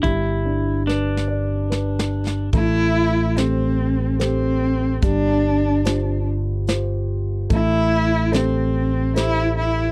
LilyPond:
<<
  \new Staff \with { instrumentName = "Upright piano" } { \time 3/4 \key a \minor \tempo 4 = 72 g8 d'8 b'8 d''8 b'4 | a4 <g' a' c''>4 <g' a' c''>4 | g4 <f' g' c''>4 <f' g' c''>4 | a4 <g' a' c''>4 <g' a' c''>4 | }
  \new Staff \with { instrumentName = "Cello" } { \time 3/4 \key a \minor r2. | e'4 c'4 c'4 | d'4. r4. | e'4 c'4 e'8 e'8 | }
  \new Staff \with { instrumentName = "Pedal steel guitar" } { \time 3/4 \key a \minor e'4 d'2 | r2. | r2. | r2. | }
  \new Staff \with { instrumentName = "Fingered electric bass" } { \clef bass \time 3/4 \key a \minor g,,2. | a,,2. | g,,2. | a,,2. | }
  \new DrumStaff \with { instrumentName = "Drums" } \drummode { \time 3/4 <hh bd>4 \tuplet 3/2 { sn8 sn8 r8 sn8 sn8 sn8 } | <hh bd>4 <hh sn>4 <hh sn>4 | <hh bd>4 <hh sn>4 <hh sn>4 | <hh bd>4 <hh sn>4 <hh sn>4 | }
>>